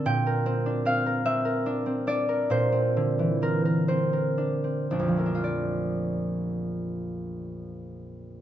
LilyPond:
\new Staff \with { instrumentName = "Harp" } { \time 6/8 \key bes \lydian \tempo 4. = 42 << { <bes' d'' g''>4 f''8 e''4 d''8 | c''4 bes'8 c''4. | <bes,, f, f a d' f' d''>2. | } \\ { <bes, d'>16 bes'16 c'16 d'16 c'16 bes'16 c'16 bes'16 d'16 c'16 d'16 bes'16 | bes,16 c'16 d16 e16 c'16 bes'16 c'16 bes'16 d'16 c'16 d'16 bes'16~ | bes'2. | } >> }